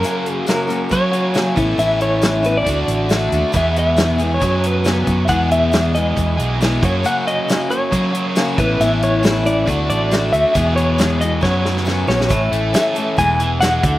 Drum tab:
HH |x-x-x-x-x-x-x-x-|x-x-x-x-x-x-x-x-|x-x-x-x-x-x-x-x-|x-x-x-x-x-x-x-x-|
SD |----o-------o---|----o-------o---|----o-------o---|----o-------o---|
BD |--------o-----o-|--------o-------|o-------o-----o-|o-------o-----o-|

HH |x-x-x-x-x-x-x-x-|x-x-x-x-x-x-x-x-|x-x-x-x---------|x-x-x-x-x-x-x-x-|
SD |----o-------o---|----o-------o---|----o---o-ooo-oo|----o-------o---|
BD |--------o-----o-|--------o-------|o-------o-------|o-------o-----o-|